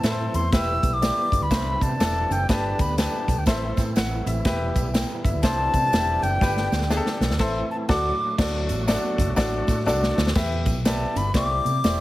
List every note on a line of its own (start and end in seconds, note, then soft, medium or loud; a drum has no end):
0.00 0.27 A2 loud
0.00 2.46 E3 medium
0.00 0.52 A3 medium
0.00 0.52 C4 medium
0.00 1.49 E4 medium
0.00 0.44 E4 medium
0.00 0.44 A4 medium
0.00 0.37 A5 loud
0.00 closed hi-hat medium
0.04 0.12 B4 medium
0.04 snare loud
0.04 tambourine loud
0.10 0.48 C5 medium
0.34 0.48 E2 loud
0.34 0.53 C6 loud
0.34 closed hi-hat medium
0.34 tambourine medium
0.34 high conga soft
0.34 low conga medium
0.52 0.76 E1 loud
0.52 3.44 G3 medium
0.52 1.50 B3 medium
0.52 0.93 E4 medium
0.52 0.93 G4 medium
0.52 0.94 B4 loud
0.52 0.95 E6 loud
0.52 kick loud
0.52 snare loud
0.52 closed hi-hat medium
0.52 tambourine medium
0.52 muted conga soft
0.69 muted conga soft
0.83 1.09 B1 medium
0.83 kick medium
0.83 closed hi-hat medium
0.83 tambourine medium
0.83 high conga medium
0.94 1.44 D6 loud
1.02 1.42 E4 medium
1.02 1.42 G4 medium
1.02 1.42 D5 medium
1.02 snare loud
1.02 closed hi-hat loud
1.02 tambourine loud
1.02 muted conga soft
1.02 high conga medium
1.17 muted conga soft
1.17 high conga medium
1.32 1.39 G1 loud
1.32 kick medium
1.32 closed hi-hat medium
1.32 tambourine medium
1.32 low conga medium
1.41 1.49 D2 medium
1.41 1.84 B5 loud
1.50 1.75 C2 loud
1.50 2.48 C4 medium
1.50 3.45 D4 medium
1.50 1.91 D4 medium
1.50 1.92 E4 medium
1.50 1.91 C5 medium
1.50 kick medium
1.50 snare loud
1.50 closed hi-hat medium
1.50 tambourine medium
1.50 muted conga soft
1.50 high conga medium
1.81 1.96 C3 medium
1.81 2.33 A5 loud
1.81 kick medium
1.81 closed hi-hat medium
1.81 tambourine medium
1.81 high conga medium
2.00 2.24 E1 medium
2.00 2.41 D4 medium
2.00 2.41 E4 medium
2.00 2.41 A4 medium
2.00 snare loud
2.00 closed hi-hat medium
2.00 tambourine medium
2.30 2.45 F#1 loud
2.30 2.50 G5 medium
2.30 closed hi-hat medium
2.30 tambourine medium
2.30 low conga medium
2.49 2.73 G1 loud
2.49 3.46 D3 medium
2.49 3.46 B3 medium
2.49 2.90 D4 medium
2.49 2.90 G4 medium
2.49 2.90 B4 loud
2.49 2.82 A5 medium
2.49 kick loud
2.49 snare loud
2.49 closed hi-hat medium
2.49 tambourine medium
2.79 3.06 D2 medium
2.79 2.99 B5 medium
2.79 kick loud
2.79 closed hi-hat medium
2.79 tambourine medium
2.79 high conga medium
2.98 3.39 D4 medium
2.98 3.39 G4 medium
2.98 3.39 B4 medium
2.98 3.40 A5 medium
2.98 snare loud
2.98 closed hi-hat medium
2.98 tambourine loud
2.98 muted conga soft
2.98 high conga medium
3.13 high conga medium
3.28 3.35 B1 medium
3.28 kick medium
3.28 closed hi-hat medium
3.28 tambourine medium
3.28 low conga medium
3.38 3.45 D2 medium
3.38 3.47 G5 medium
3.46 3.71 A1 loud
3.46 6.40 E3 medium
3.46 4.45 A3 medium
3.46 4.45 C4 medium
3.46 3.87 E4 medium
3.46 5.42 E4 medium
3.46 3.88 A4 medium
3.46 3.88 C5 medium
3.46 3.76 E5 medium
3.46 kick medium
3.46 snare loud
3.46 closed hi-hat medium
3.46 tambourine medium
3.46 muted conga soft
3.46 high conga medium
3.63 muted conga soft
3.77 3.92 A2 medium
3.77 kick medium
3.77 snare soft
3.77 closed hi-hat medium
3.77 tambourine medium
3.77 high conga medium
3.96 4.20 A1 medium
3.96 4.25 F#5 medium
3.96 snare loud
3.96 closed hi-hat medium
3.96 tambourine medium
4.26 4.41 A1 medium
4.26 4.73 E5 medium
4.26 closed hi-hat medium
4.26 tambourine medium
4.26 low conga medium
4.45 4.69 E1 loud
4.45 7.37 G3 medium
4.45 5.43 B3 medium
4.45 4.86 E4 loud
4.45 4.86 G4 loud
4.45 4.86 B4 loud
4.45 kick loud
4.45 snare loud
4.45 closed hi-hat loud
4.45 tambourine medium
4.61 muted conga soft
4.75 5.02 B1 medium
4.75 4.93 E5 medium
4.75 kick medium
4.75 closed hi-hat medium
4.75 tambourine medium
4.75 high conga medium
4.94 5.23 G5 medium
4.94 snare loud
4.94 closed hi-hat medium
4.94 tambourine loud
4.94 muted conga soft
4.94 high conga medium
5.09 muted conga soft
5.09 high conga medium
5.25 5.32 G1 loud
5.25 5.72 E5 medium
5.25 kick medium
5.25 closed hi-hat medium
5.25 tambourine medium
5.25 low conga medium
5.34 5.41 D2 medium
5.42 5.67 C2 loud
5.42 6.41 C4 medium
5.42 7.38 D4 medium
5.42 5.84 D4 medium
5.42 5.84 E4 medium
5.42 5.84 C5 medium
5.42 6.24 A5 loud
5.42 kick medium
5.42 snare loud
5.42 closed hi-hat medium
5.42 tambourine medium
5.42 muted conga soft
5.42 high conga medium
5.74 5.88 C3 medium
5.74 kick medium
5.74 closed hi-hat medium
5.74 tambourine medium
5.74 high conga medium
5.92 6.16 E1 medium
5.92 6.33 D4 medium
5.92 6.33 E4 medium
5.92 6.33 G4 medium
5.92 snare loud
5.92 closed hi-hat medium
5.92 tambourine loud
6.22 6.37 F#1 loud
6.22 6.91 G5 loud
6.22 closed hi-hat medium
6.22 tambourine medium
6.22 low conga medium
6.41 6.65 G1 loud
6.41 7.39 D3 medium
6.41 7.39 B3 medium
6.41 6.82 D4 medium
6.41 6.82 G4 medium
6.41 6.83 B4 loud
6.41 kick loud
6.41 snare medium
6.41 tambourine medium
6.57 snare medium
6.57 muted conga soft
6.72 6.98 D2 medium
6.72 snare medium
6.72 tambourine medium
6.72 high conga medium
6.81 snare medium
6.90 7.31 D4 medium
6.90 7.31 G4 medium
6.90 6.98 G#4 medium
6.90 snare medium
6.90 tambourine loud
6.90 high conga medium
6.97 7.35 A4 loud
7.06 snare medium
7.06 high conga medium
7.20 7.28 B1 medium
7.20 snare medium
7.20 tambourine medium
7.20 low conga medium
7.30 7.38 D2 medium
7.30 snare medium
7.39 7.61 A1 loud
7.39 7.89 E3 medium
7.39 8.36 A3 medium
7.39 7.89 C4 medium
7.39 7.61 E4 loud
7.39 7.89 E4 medium
7.39 7.61 A4 loud
7.39 7.61 C5 loud
7.39 kick loud
7.39 snare medium
7.39 crash medium
7.71 7.77 A5 medium
7.89 8.10 D2 loud
7.89 8.37 F#3 medium
7.89 8.37 D4 medium
7.89 8.10 F#4 loud
7.89 8.37 F#4 medium
7.89 8.10 A4 loud
7.89 8.10 D5 loud
7.89 8.35 D6 loud
7.89 kick loud
7.89 snare loud
7.89 crash medium
8.38 8.70 D2 loud
8.38 10.33 F#3 medium
8.38 10.33 A3 medium
8.38 10.33 D4 medium
8.38 8.79 D4 medium
8.38 10.33 F#4 medium
8.38 8.79 F#4 medium
8.38 8.79 A4 medium
8.38 8.79 D5 medium
8.38 kick loud
8.38 snare loud
8.38 crash loud
8.38 tambourine medium
8.56 muted conga soft
8.69 8.95 A1 medium
8.69 closed hi-hat medium
8.69 tambourine medium
8.69 high conga medium
8.87 9.28 D4 medium
8.87 8.95 E4 medium
8.87 9.28 A4 medium
8.87 9.29 D5 medium
8.87 snare loud
8.87 closed hi-hat medium
8.87 tambourine loud
8.87 muted conga soft
8.87 high conga medium
8.93 9.31 F#4 medium
9.04 high conga medium
9.18 9.26 F#1 loud
9.18 kick medium
9.18 closed hi-hat medium
9.18 tambourine medium
9.18 low conga medium
9.28 9.35 B1 loud
9.36 9.61 A1 loud
9.36 9.77 D4 loud
9.36 9.78 F#4 medium
9.36 9.78 A4 medium
9.36 9.78 D5 loud
9.36 kick medium
9.36 snare loud
9.36 closed hi-hat medium
9.36 tambourine medium
9.36 muted conga soft
9.36 high conga medium
9.53 muted conga soft
9.67 9.88 A2 medium
9.67 kick medium
9.67 snare soft
9.67 closed hi-hat medium
9.67 tambourine medium
9.67 high conga medium
9.86 10.10 C2 loud
9.86 10.27 D4 medium
9.86 10.27 F#4 medium
9.86 10.27 A4 medium
9.86 10.27 D5 loud
9.86 snare medium
9.86 tambourine loud
10.03 snare medium
10.17 10.32 D2 loud
10.17 snare loud
10.17 tambourine soft
10.17 low conga medium
10.27 snare medium
10.35 10.68 E2 loud
10.35 10.76 E4 medium
10.35 10.76 G4 medium
10.35 10.76 B4 medium
10.35 10.77 E5 medium
10.35 kick loud
10.35 snare loud
10.35 crash loud
10.35 tambourine medium
10.35 muted conga soft
10.66 11.04 B1 medium
10.66 kick loud
10.66 closed hi-hat medium
10.66 tambourine medium
10.66 high conga medium
10.85 11.26 E4 medium
10.85 11.26 G4 medium
10.85 11.26 B4 medium
10.85 11.26 D5 medium
10.85 11.19 A5 medium
10.85 snare loud
10.85 closed hi-hat loud
10.85 tambourine loud
10.85 muted conga soft
10.85 high conga medium
11.00 high conga medium
11.16 11.30 G1 loud
11.16 11.35 B5 loud
11.16 closed hi-hat medium
11.16 tambourine medium
11.16 low conga medium
11.34 11.58 C2 loud
11.34 11.75 E4 medium
11.34 11.75 G4 medium
11.34 11.75 C5 medium
11.34 11.76 D5 medium
11.34 12.01 D6 loud
11.34 kick medium
11.34 snare loud
11.34 closed hi-hat medium
11.34 tambourine medium
11.34 muted conga soft
11.34 high conga medium
11.50 muted conga soft
11.65 11.80 C3 medium
11.65 closed hi-hat medium
11.65 tambourine medium
11.65 high conga medium
11.84 12.01 E1 loud
11.84 12.01 E4 medium
11.84 12.01 G4 medium
11.84 12.01 C5 medium
11.84 12.01 D5 medium
11.84 snare loud
11.84 closed hi-hat medium
11.84 tambourine loud